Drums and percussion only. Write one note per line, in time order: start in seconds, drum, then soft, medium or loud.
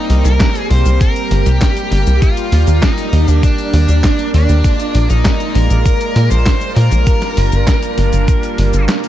0.10 open hi-hat medium
0.25 closed hi-hat soft
0.25 cabasa medium
0.40 kick loud
0.40 snare loud
0.40 clap loud
0.40 closed hi-hat medium
0.40 cabasa medium
0.55 closed hi-hat soft
0.55 cabasa soft
0.71 open hi-hat medium
0.86 closed hi-hat soft
0.86 cabasa medium
1.01 kick loud
1.01 closed hi-hat medium
1.01 cabasa medium
1.16 closed hi-hat soft
1.16 cabasa soft
1.31 open hi-hat medium
1.46 closed hi-hat soft
1.46 cabasa medium
1.61 kick loud
1.61 snare loud
1.61 clap medium
1.61 closed hi-hat medium
1.61 cabasa medium
1.77 closed hi-hat soft
1.77 cabasa soft
1.92 open hi-hat medium
2.07 closed hi-hat soft
2.07 cabasa medium
2.22 kick loud
2.22 closed hi-hat medium
2.22 cabasa soft
2.37 closed hi-hat soft
2.37 cabasa soft
2.52 open hi-hat medium
2.67 closed hi-hat soft
2.67 cabasa medium
2.83 kick loud
2.83 snare loud
2.83 clap medium
2.83 closed hi-hat medium
2.83 cabasa medium
2.98 closed hi-hat soft
2.98 cabasa soft
3.13 open hi-hat medium
3.28 closed hi-hat soft
3.28 cabasa medium
3.43 kick loud
3.43 closed hi-hat medium
3.43 cabasa medium
3.58 closed hi-hat soft
3.58 cabasa soft
3.73 open hi-hat medium
3.89 closed hi-hat soft
3.89 cabasa medium
4.04 kick loud
4.04 snare loud
4.04 clap medium
4.04 closed hi-hat medium
4.04 cabasa medium
4.19 closed hi-hat soft
4.19 cabasa soft
4.34 open hi-hat medium
4.49 closed hi-hat soft
4.49 cabasa medium
4.64 kick loud
4.64 closed hi-hat medium
4.64 cabasa soft
4.80 closed hi-hat soft
4.80 cabasa soft
4.95 open hi-hat medium
5.10 closed hi-hat soft
5.10 cabasa medium
5.25 kick loud
5.25 snare loud
5.25 clap loud
5.25 closed hi-hat loud
5.25 cabasa medium
5.40 closed hi-hat soft
5.40 cabasa soft
5.55 open hi-hat medium
5.70 closed hi-hat soft
5.70 cabasa medium
5.86 kick loud
5.86 closed hi-hat loud
5.86 cabasa medium
6.01 closed hi-hat soft
6.01 cabasa soft
6.16 open hi-hat medium
6.31 closed hi-hat soft
6.31 cabasa medium
6.46 kick loud
6.46 snare loud
6.46 clap medium
6.46 closed hi-hat medium
6.46 cabasa medium
6.61 closed hi-hat soft
6.61 cabasa soft
6.76 open hi-hat medium
6.92 closed hi-hat soft
6.92 cabasa medium
7.07 kick loud
7.07 closed hi-hat loud
7.07 cabasa soft
7.22 snare soft
7.22 closed hi-hat soft
7.22 cabasa soft
7.37 open hi-hat medium
7.52 closed hi-hat soft
7.52 cabasa medium
7.67 kick loud
7.67 snare loud
7.67 clap loud
7.67 closed hi-hat loud
7.67 cabasa medium
7.83 closed hi-hat soft
7.83 cabasa soft
7.98 open hi-hat medium
8.13 closed hi-hat soft
8.13 cabasa medium
8.28 kick loud
8.28 closed hi-hat loud
8.28 cabasa medium
8.43 closed hi-hat soft
8.43 cabasa soft
8.58 open hi-hat medium
8.73 closed hi-hat soft
8.73 cabasa medium
8.89 snare loud
8.89 clap loud
8.89 closed hi-hat medium
8.89 cabasa soft
9.04 closed hi-hat soft
9.04 cabasa soft